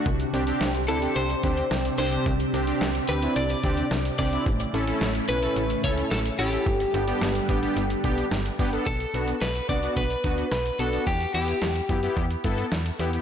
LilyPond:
<<
  \new Staff \with { instrumentName = "Clean electric guitar" } { \time 4/4 \key b \phrygian \tempo 4 = 109 r4. a'8 c''4. c''8 | r4. b'8 d''4. d''8 | r4. b'4 cis''8 a'8 g'8~ | g'2. r4 |
a'4 b'8 d''8 b'4 b'8 a'8 | g'8 g'4. r2 | }
  \new Staff \with { instrumentName = "Analog polysynth" } { \time 4/4 \key b \phrygian r8 <c' d' g'>16 <c' d' g'>8 r16 <c' d' e'>16 <c' d' g'>8 r16 <c' d' g'>8 r8 <c' d' g'>16 <c' d' g'>16~ | <c' d' g'>16 r16 <c' d' g'>16 <c' d' g'>8 r16 <c' d' g'>16 <c' d' e'>8 r16 <c' d' g'>8 r8 <c' d' g'>16 <c' d' e'>16 | r8 <cis' e' a'>16 <cis' e' a'>8 r16 <cis' e' b'>16 <cis' e' a'>8 r16 <cis' e' a'>8 r8 <cis' e' a'>16 <cis' e' a'>16 | r8 <b d' g'>16 <b d' g'>8 r16 <b d' g'>16 <b d' g'>8 r16 <b d' g'>8 r8 <b d' g'>16 <b d' a'>16 |
r8 <b d' fis'>8 r8 <b d' fis'>16 <b d' fis'>8 r16 <b d' fis'>8 r8 <b d' fis'>16 <b d' fis'>16 | r8 <b e' g'>8 r8 <b e' g'>16 <b e' g'>8 r16 <b e' a'>8 r8 <b e' g'>16 <b e' g'>16 | }
  \new Staff \with { instrumentName = "String machine" } { \time 4/4 \key b \phrygian <c c' d' g'>1~ | <c c' d' g'>1 | <a cis' e'>1 | <g d' a' b'>1 |
r1 | r1 | }
  \new Staff \with { instrumentName = "FM bass" } { \clef bass \time 4/4 \key b \phrygian c,8 c,8 c,8 d,8 c,8 d,8 c,8 c,8 | c,8 c,8 c,8 d,8 c,8 d,8 c,8 c,8 | a,,8 a,,8 a,,8 b,,8 a,,8 cis,8 a,,8 a,,8 | g,,8 g,,8 g,,8 a,,8 g,,8 b,,8 g,,8 g,,8 |
b,,8 b,,8 b,,8 c,8 b,,8 d,8 b,,8 b,,8 | e,8 e,8 e,8 fis,8 e,8 g,8 e,8 e,8 | }
  \new DrumStaff \with { instrumentName = "Drums" } \drummode { \time 4/4 <hh bd>16 hh16 hh16 hh16 <hh sn>16 hh16 hh16 hh16 hh16 hh16 <hh bd>16 hh16 <hh sn>16 hh16 hho16 hh16 | <hh bd>16 hh16 hh16 hh16 <hh sn>16 hh16 hh16 hh16 hh16 hh16 <hh bd>16 hh16 <hh sn>16 hh16 <hho bd>16 hh16 | <hh bd>16 hh16 hh16 hh16 <hh sn>16 hh16 hh16 hh16 hh16 hh16 <hh bd>16 hh16 <hh sn>16 hh16 hho16 hh16 | <hh bd>16 hh16 hh16 hh16 <hh sn>16 hh16 <hh bd>16 hh16 hh16 hh16 <hh bd>16 hh16 <hh sn>16 hh16 <hho bd>16 hh16 |
<hh bd>16 hh16 hh16 hh16 <hh sn>16 hh16 <hh bd>16 hh16 <hh bd>16 hh16 <hh bd>16 hh16 <hh sn>16 hh16 hh16 hh16 | <hh bd>16 hh16 hh16 hh16 <hh sn>16 hh16 <hh bd>16 hh16 <hh bd>16 hh16 <hh bd>16 hh16 <hh sn>16 hh16 hh16 hh16 | }
>>